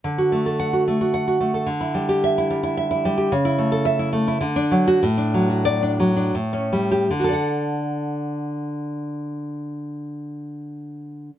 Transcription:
\new Staff \with { instrumentName = "Nylon-string guitar" } { \time 3/4 \key d \major \tempo 4 = 98 << { r4 fis''8 r4. | r4 e''8 r4. | r4 e''8 r4 r16 fis'16 | r4 d''8 r4 r16 g'16 |
<d fis' a' d'' fis''>2.~ | <d fis' a' d'' fis''>2. | } \\ { d16 fis'16 a16 a'8 fis'16 a16 fis'16 fis''16 fis'16 a16 a'16 | d16 e'16 g16 g'8 e'16 g16 e'16 e''16 e'16 g16 g'16 | cis16 e'16 a16 a'8 e'16 a16 e'16 d16 d'16 fis8 | a,16 d'16 fis16 fis'8 d'16 fis16 d'16 a,16 cis'16 g8 |
r2. | r2. | } >> }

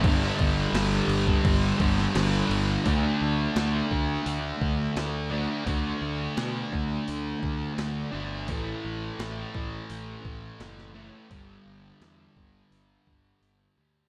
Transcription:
<<
  \new Staff \with { instrumentName = "Distorted electric guitar" } { \clef bass \time 4/4 \key d \major \tempo 4 = 85 <g, d g>2~ <g, d g>8 <g, d g>8 <g, d g>4 | <d a d'>2.~ <d a d'>8 <d a d'>8 | <d a d'>2.~ <d a d'>8 <d a d'>8 | <a, e a>2.~ <a, e a>8 <a, e a>8 |
<g, d g>2.~ <g, d g>8 <g, d g>8 | }
  \new Staff \with { instrumentName = "Fingered electric bass" } { \clef bass \time 4/4 \key d \major g,,8 g,,8 g,,8 g,,8 g,,8 g,,8 g,,8 g,,8 | d,8 d,8 d,8 d,8 d,8 d,8 d,4 | d,8 d,8 b,8 d,8 d,8 d,8 d,8 g,,8 | a,,8 a,,8 a,,8 a,,8 a,,8 a,,8 fis,,4 |
g,,8 g,,8 e,8 g,,8 g,,8 g,,8 g,,8 d,8 | }
  \new DrumStaff \with { instrumentName = "Drums" } \drummode { \time 4/4 <cymc bd>8 <cymc bd>8 <cymc sn>8 cymc16 bd16 <cymc bd>8 <cymc bd>16 sn16 <cymc sn>8 cymc8 | <hho bd>4 <hho sn>8 bd8 hho8 bd8 <hho sn>4 | <hho bd>4 <hho sn>8 bd8 hho8 bd8 <hho sn>4 | <hho bd>4 <hho sn>8 bd8 hho8 bd8 <hho sn>16 sn8. |
<hho bd>4 <hho sn>8 bd8 hho8 bd8 hho4 | }
>>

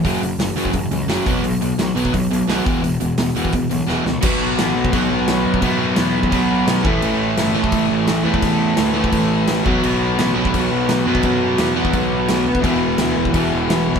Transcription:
<<
  \new Staff \with { instrumentName = "Overdriven electric guitar" } { \clef bass \time 4/4 \key e \dorian \tempo 4 = 172 r1 | r1 | r1 | <b, fis b>1 |
<b, fis b>2.~ <b, fis b>8 <a, e a>8~ | <a, e a>2.~ <a, e a>8 <a, e a>8~ | <a, e a>2.~ <a, e a>8 <b, fis b>8~ | <b, fis b>2.~ <b, fis b>8 <b, fis b>8~ |
<b, fis b>2.~ <b, fis b>8 r8 | <e, b, e>1 | }
  \new Staff \with { instrumentName = "Distorted electric guitar" } { \clef bass \time 4/4 \key e \dorian <fis, cis fis>8 <fis, cis>8 <fis, cis>8 <fis, cis fis>8 <fis, cis>8 <fis, cis>8 <fis, cis fis>8 <b, fis b>8 | <b, fis>8 <b, fis>8 <b, fis>8 <b, fis b>8 <b, fis>8 <b, fis>8 <b, fis b>8 <e, b, e>8 | <e, b,>8 <e, b,>8 <e, b,>8 <e, b, e>8 <e, b,>8 <e, b,>8 <e, b, e>8 <e, b,>8 | <b, fis b>2 <b, fis b>2 |
<b, fis b>2 <b, fis b>4. <a, e a>8~ | <a, e a>4. <a, e a>2 <a, e a>8~ | <a, e a>4. <a, e a>2 <b, fis b>8~ | <b, fis b>4. <b, fis b>2 <b, fis b>8~ |
<b, fis b>4. <b, fis b>2 r8 | <e, b, e>2 <e, b, e>2 | }
  \new Staff \with { instrumentName = "Overdriven electric guitar" } { \clef bass \time 4/4 \key e \dorian <fis, cis fis>8 <fis, cis>8 <fis, cis>8 <fis, cis fis>8 <fis, cis>8 <fis, cis>8 <fis, cis fis>8 <b, fis b>8 | <b, fis>8 <b, fis>8 <b, fis>8 <b, fis b>8 <b, fis>8 <b, fis>8 <b, fis b>8 <e, b, e>8 | <e, b,>8 <e, b,>8 <e, b,>8 <e, b, e>8 <e, b,>8 <e, b,>8 <e, b, e>8 <e, b,>8 | <b, fis b>2 <b, fis b>2 |
<b, fis b>2 <b, fis b>4. <a, e a>8~ | <a, e a>4. <a, e a>2 <a, e a>8~ | <a, e a>4. <a, e a>2 <b, fis b>8~ | <b, fis b>4. <b, fis b>2 <b, fis b>8~ |
<b, fis b>4. <b, fis b>2 r8 | <e, b, e>2 <e, b, e>2 | }
  \new Staff \with { instrumentName = "Picked electric bass" } { \clef bass \time 4/4 \key e \dorian fis,,8 fis,,8 fis,,8 fis,8 fis,,8 cis,8 fis,,8 b,,8 | b,,8 b,,8 b,,8 b,,8 b,,8 b,,8 b,,8 e,,8 | e,,8 e,,8 e,,8 e,8 e,,8 b,,8 e,,8 cis,8 | b,,4 a,,8 b,,8 b,,8 b,,8 b,,8 fis,8 |
fis,4 e,4 b,,4 b,,8 a,,8 | a,,4 g,,8 a,,8 a,,8 a,,8 a,,8 e,8 | e,4 d,4 a,,4 a,,8 b,,8 | b,,4 a,,8 b,,8 b,,8 b,,8 b,,8 fis,8 |
fis,4 e,4 b,,4 b,,8 d,8 | e,,4 d,8 e,,8 e,,8 e,,8 e,,8 b,,8 | }
  \new DrumStaff \with { instrumentName = "Drums" } \drummode { \time 4/4 <hho bd>8 hho8 <hho sn>8 hho16 bd16 <hho bd>8 hho8 <hho sn>8 <hho bd>8 | hho8 hho8 <hho sn>8 hho16 bd16 <hho bd>8 hho8 <hho sn>8 <hho bd>8 | hho8 hho8 <hho sn>8 hho16 bd16 <hho bd>8 hho8 sn8 sn8 | <cymc bd>4 <cymc sn>8. bd16 <cymc bd>4 <cymc sn>8. bd16 |
<cymc bd>4 <cymc sn>8. bd16 <cymc bd>4 <cymc sn>8 bd8 | cymc4 <cymc sn>8. bd16 <cymc bd>4 <cymc sn>8. bd16 | <cymc bd>4 <cymc sn>8. bd16 <cymc bd>4 <cymc sn>8 bd8 | cymc4 <cymc sn>8. bd16 <cymc bd>4 <cymc sn>8. bd16 |
<cymc bd>4 <cymc sn>8. bd16 <cymc bd>4 <cymc sn>8. bd16 | <cymc bd>4 <cymc sn>8. bd16 <cymc bd>4 <cymc sn>8. bd16 | }
>>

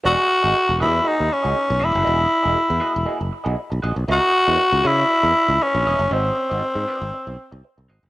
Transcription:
<<
  \new Staff \with { instrumentName = "Clean electric guitar" } { \time 4/4 \key e \lydian \tempo 4 = 118 <ais fis' gis' dis''>8 r16 <ais fis' gis' dis''>16 r8 <ais fis' gis' dis''>16 r16 <ais fis' gis' dis''>16 r8 <ais fis' gis' dis''>16 r8 <ais fis' gis' dis''>16 r16 | <ais fis' gis' dis''>8 r16 <ais fis' gis' dis''>16 r8 <ais fis' gis' dis''>16 r16 <ais fis' gis' dis''>16 r8 <ais fis' gis' dis''>16 r8 <ais fis' gis' dis''>16 r16 | <cis' e' ais' dis''>8 r16 <cis' e' ais' dis''>16 r8 <cis' e' ais' dis''>16 r8 <cis' e' ais' dis''>16 r4 <cis' e' ais' dis''>16 r16 | <dis' fis' bis' dis''>8 r16 <dis' fis' bis' dis''>16 r8 <dis' fis' bis' dis''>8 r4. <dis' fis' bis' dis''>16 r16 | }
  \new Staff \with { instrumentName = "Tenor saxophone" } { \time 4/4 \key e \lydian fis'4. e'8 dis'8 cis'4 e'8~ | e'2~ e'8 r4. | fis'4. e'4. cis'4 | bis2. r4 | }
  \new Staff \with { instrumentName = "Fingered electric bass" } { \clef bass \time 4/4 \key e \lydian e,,16 r8 gis,,16 r16 e,,16 e,8 r16 dis,16 r16 cis,16 r16 b,,16 e,,16 fis,,16 | e,,8 r16 e,,16 r16 e,16 r16 e,,16 r16 fis,,16 r16 b,,16 r16 b,,16 ais,,16 b,,16 | cis,16 r8 e,16 r16 cis,16 cis8 r16 e,16 r16 cis,16 r16 ais,,16 e,,16 fis,,16 | gis,,8 r16 gis,,16 r16 gis,16 r16 gis,,16 r16 b,,16 r16 bis,,16 r16 bis,,16 gis,,16 fis,,16 | }
>>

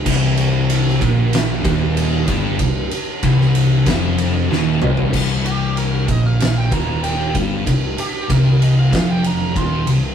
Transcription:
<<
  \new Staff \with { instrumentName = "Lead electric guitar" } { \time 4/4 \key c \minor \tempo 4 = 95 r1 | r1 | r8 g'8 bes'8 ees''16 f''8 g''16 bes''8 g''8 r8 | r8 g'8 bes'8 ees''16 f''8 g''16 bes''8 c'''8 r8 | }
  \new Staff \with { instrumentName = "Distorted electric guitar" } { \clef bass \time 4/4 \key c \minor c,4. bes,4 ees,4 g,8 | c,8 r8 c,4 f,4 ees,8 c,8 | c,4. bes,4 ees,4 g,8 | c,8 r8 c,4 f,4 ees,8 c,8 | }
  \new Staff \with { instrumentName = "Distorted electric guitar" } { \clef bass \time 4/4 \key c \minor c,4. bes,4 ees,4 g,8 | c,8 r8 c,4 f,4 ees,8 c,8 | c,4. bes,4 ees,4 g,8 | c,8 r8 c,4 f,4 ees,8 c,8 | }
  \new Staff \with { instrumentName = "Distorted electric guitar" } { \clef bass \time 4/4 \key c \minor c,4. bes,4 ees,4 g,8 | c,8 r8 c,4 f,4 ees,8 c,8 | r1 | r1 | }
  \new Staff \with { instrumentName = "Picked electric bass" } { \clef bass \time 4/4 \key c \minor c,,4. bes,,4 ees,,4 g,,8 | c,,8 r8 c,,4 f,,4 ees,,8 c,,8 | c,,4. bes,,4 ees,,4 g,,8 | c,,8 r8 c,,4 f,,4 ees,,8 c,,8 | }
  \new DrumStaff \with { instrumentName = "Drums" } \drummode { \time 4/4 <cymc bd>8 cymr8 cymr16 sn16 <bd cymr>8 <cymr sn>8 <bd cymr>8 cymr8 <bd cymr>8 | <bd cymr>8 cymr8 <bd cymr>16 sn16 cymr8 <bd cymr sn>8 cymr8 sn8 toml16 tomfh16 | <cymc bd>8 cymr8 cymr8 <bd cymr>8 <cymr sn>8 <bd cymr>8 cymr8 <bd cymr>8 | <bd cymr>8 cymr8 <bd cymr>8 cymr8 <bd cymr sn>8 cymr8 <bd cymr>8 cymr8 | }
>>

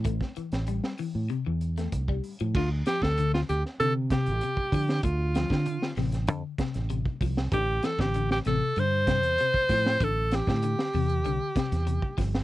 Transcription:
<<
  \new Staff \with { instrumentName = "Alto saxophone" } { \time 4/4 \key d \minor \tempo 4 = 97 r1 | f'8 g'16 a'8 f'16 g'8 a'8 g'4. | f'4. r2 r8 | g'8 a'16 g'8 g'16 a'8 c''2 |
a'8 g'2. r8 | }
  \new Staff \with { instrumentName = "Clean electric guitar" } { \clef bass \time 4/4 \key d \minor a8 e8 g8 e8 c16 e8 a8 g8 f16 | d8 f16 d16 d8 r8 d8 c8 c8 f8 | r8 f16 d16 d8 c8 d8 c8 c8 f8 | d8 e16 d16 d8 c8 d8 c8 c8 f8 |
d8 e16 d16 d8 c8 d8 c8 c8 f8 | }
  \new Staff \with { instrumentName = "Fingered electric bass" } { \clef bass \time 4/4 \key d \minor a,,16 r8 a,,8 r8 a,16 r16 e,8. c,8 r16 a,16 | d,8 r16 d,8. d,16 r16 c8. a,,16 r8 d8 | d,8. d8 r16 a,,8 f,16 r8 a,,8 r16 c,8 | a,,8 r16 a,,8. a,,16 r16 g,8. e,16 r8 a,8 |
a,,8. a,8 r16 e,8 c,16 r8 e,8 r16 g,,8 | }
  \new DrumStaff \with { instrumentName = "Drums" } \drummode { \time 4/4 <hh bd>16 <bd sn>16 hh16 <hh sn>16 hh16 sn16 hho8 hh8 hh16 <hh sn>16 <hh bd>16 bd16 hho16 hh16 | <cymc bd>8 <hh sn>16 <bd sn>16 hh16 sn16 hh16 sn16 hh8 <hh bd sn>16 hh16 hh16 bd16 <hho bd>16 sn16 | <hh bd>8 <hh sn>16 <bd sn>16 hh16 sn16 <hho sn>16 <hh sn>16 hh8 <hh bd sn>16 <hh sn>16 hh16 bd16 <hho bd>16 sn16 | <hh bd>8 <hh sn>16 <bd sn>16 hh16 sn16 <hh sn>8 hh8 <hh bd sn>16 hh16 hh16 bd16 <hho bd sn>16 sn16 |
<hh bd>8 <hh sn>16 <bd sn>16 hh16 sn16 hho16 hh16 hh8 <hh bd sn>16 <hh sn>16 hh16 bd16 <hho bd sn>16 sn16 | }
>>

